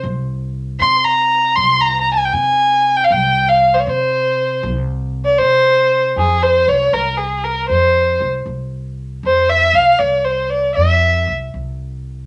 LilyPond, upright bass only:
\new Staff \with { instrumentName = "Upright bass" } { \clef bass \time 6/8 \tempo 4. = 78 c,4. c4. | c,4. c4. | c,4. c4. | c,4. c4. |
f,4 c,8 c,4. | f,4 c,8 c,4. | f,4 c,8 c,4. | f,4 c,8 c,4. | }